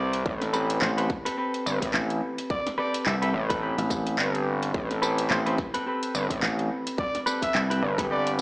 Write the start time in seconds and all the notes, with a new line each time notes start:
Already playing: C2 C4 G4 A4 B4 D5
0.13 closed hi-hat
0.26 A1, kick
0.42 snare, closed hi-hat
0.53 C4 G4 A4 B4, tambourine
0.70 closed hi-hat
0.82 A1 C5, clap
0.98 C4 G4 A4 B4 C5, closed hi-hat
1.10 kick, snare
1.25 C4 G4 A4 B4, closed hi-hat
1.37 C4 G4 A4 B4
1.54 closed hi-hat
1.66 G1, tambourine
1.82 A1, kick, closed hi-hat
1.94 A1, clap
2.10 closed hi-hat
2.38 closed hi-hat
2.50 D5, kick
2.67 snare, closed hi-hat
2.78 C4 G4 A4 B4 D5
2.94 closed hi-hat
3.06 C2 E5, clap
3.22 C4 G4 A4 B4 E5, closed hi-hat
3.34 A1
3.50 C4 G4 A4 B4, kick, closed hi-hat
3.62 C4 G4 A4 B4
3.78 A1, closed hi-hat
3.90 kick, snare, tambourine
4.07 closed hi-hat
4.18 G1, clap
4.35 closed hi-hat
4.63 closed hi-hat
4.74 A1, kick
4.91 snare, closed hi-hat
5.02 C4 G4 A4 B4, tambourine
5.18 closed hi-hat
5.30 A1 C5, clap
5.46 C4 G4 A4 B4 C5, closed hi-hat
5.58 kick, snare
5.74 C4 G4 A4 B4, closed hi-hat
5.86 C4 G4 A4 B4
6.03 closed hi-hat
6.15 G1, tambourine
6.30 A1, kick, closed hi-hat
6.42 A1, clap
6.59 closed hi-hat
6.87 closed hi-hat
6.98 D5, kick
7.15 snare, closed hi-hat
7.26 C4 G4 A4 B4, tambourine
7.42 E5, kick, closed hi-hat
7.54 C2, clap
7.70 C4 G4 A4 B4, closed hi-hat
7.83 G1
7.98 C4 G4 A4 B4, kick, closed hi-hat
8.10 C4 G4 A4 B4 D5
8.27 closed hi-hat